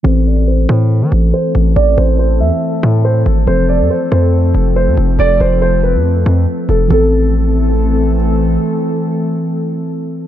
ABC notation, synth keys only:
X:1
M:4/4
L:1/8
Q:1/4=140
K:Am
V:1 name="Synth keys"
[E,CA]8- | [E,CA]8 | [F,CA]8- | [F,CA]8 |
[E,CA]8- | [E,CA]8 |]